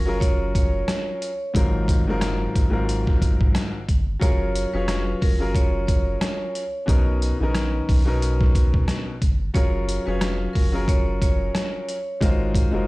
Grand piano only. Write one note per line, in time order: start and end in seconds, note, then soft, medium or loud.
0.05 1.27 F#3 medium
0.05 1.28 C#4 medium
0.05 1.28 F4 medium
0.05 1.29 G#4 medium
0.05 1.29 A#4 loud
1.54 2.02 G#2 loud
1.54 2.02 D#3 medium
1.54 2.02 F#3 medium
1.54 2.03 C4 medium
1.54 2.03 F4 medium
1.54 2.03 A#4 loud
2.07 2.68 G#2 medium
2.07 2.68 D#3 medium
2.07 2.68 F#3 medium
2.07 2.69 C4 medium
2.07 2.69 F4 medium
2.07 2.69 A#4 loud
2.70 3.78 G#2 medium
2.70 3.79 D#3 medium
2.70 3.79 F#3 medium
2.70 3.79 C4 medium
2.70 3.79 F4 medium
2.70 3.80 A#4 loud
4.19 4.68 F#3 medium
4.19 4.69 C#4 medium
4.19 4.69 F4 medium
4.19 4.69 G#4 medium
4.19 4.70 A#4 loud
4.73 5.34 F#3 medium
4.73 5.34 C#4 medium
4.73 5.35 F4 medium
4.73 5.35 G#4 medium
4.73 5.35 C#5 loud
5.39 6.61 F#3 medium
5.39 6.61 C#4 medium
5.39 6.62 F4 medium
5.39 6.62 G#4 medium
5.39 6.62 A#4 loud
6.86 7.35 B2 loud
6.86 7.35 B3 medium
6.86 7.35 C#4 medium
6.86 7.36 D#4 medium
6.86 7.36 A#4 loud
7.40 8.01 D#3 medium
7.40 8.01 B3 medium
7.40 8.02 C#4 medium
7.40 8.02 D#4 loud
7.40 8.03 A#4 loud
8.05 9.12 B2 medium
8.05 9.13 B3 medium
8.05 9.13 C#4 medium
8.05 9.13 D#4 medium
8.05 9.14 A#4 loud
9.54 10.02 F#3 medium
9.54 10.02 C#4 medium
9.54 10.03 F4 medium
9.54 10.03 G#4 medium
9.54 10.03 A#4 medium
10.05 10.67 F#3 loud
10.05 10.67 C#4 medium
10.05 10.68 F4 medium
10.05 10.68 G#4 medium
10.05 10.68 C#5 loud
10.72 11.94 F#3 medium
10.72 11.95 C#4 medium
10.72 11.95 F4 medium
10.72 11.95 G#4 medium
10.72 11.96 A#4 loud
12.21 12.69 G#3 loud
12.21 12.69 D#4 medium
12.21 12.69 F4 medium
12.21 12.70 F#4 medium
12.21 12.70 A#4 medium
12.21 12.70 C5 loud
12.71 12.87 G#3 medium
12.71 12.87 D#4 medium
12.71 12.87 F4 medium
12.71 12.87 F#4 medium
12.71 12.87 A#4 medium
12.71 12.87 C5 medium